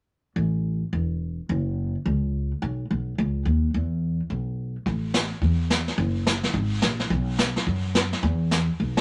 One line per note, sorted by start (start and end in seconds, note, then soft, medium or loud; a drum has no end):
0.36 0.81 A1 medium
0.93 1.38 E1 medium
1.49 1.94 F#1 medium
2.06 2.50 C#2 medium
2.62 2.84 B1 medium
2.91 3.14 B1 medium
3.18 3.42 C#2 medium
3.45 3.70 D#2 medium
3.74 4.19 E2 medium
4.30 4.75 B1 medium
4.86 5.31 A1 medium
4.86 brush sweep soft
4.86 kick soft
5.14 snare medium
5.14 hi-hat pedal medium
5.42 5.87 E2 medium
5.42 brush sweep soft
5.42 kick soft
5.70 snare medium
5.70 hi-hat pedal medium
5.88 snare soft
5.98 6.43 F#1 medium
5.98 brush sweep medium
5.98 kick soft
6.27 snare medium
6.27 hi-hat pedal medium
6.43 snare soft
6.54 6.78 G#1 medium
6.54 brush sweep medium
6.54 kick soft
6.82 7.07 A#1 medium
6.82 snare medium
6.82 hi-hat pedal medium
6.99 snare soft
7.10 7.55 B1 medium
7.10 brush sweep soft
7.10 kick soft
7.39 snare medium
7.39 hi-hat pedal medium
7.56 snare soft
7.67 8.12 F#2 medium
7.67 brush sweep soft
7.67 kick soft
7.95 snare medium
7.95 hi-hat pedal medium
8.13 snare soft
8.23 8.68 E2 loud
8.23 brush sweep soft
8.23 kick soft
8.51 snare medium
8.51 hi-hat pedal medium
8.80 9.01 B1 medium
8.97 snare medium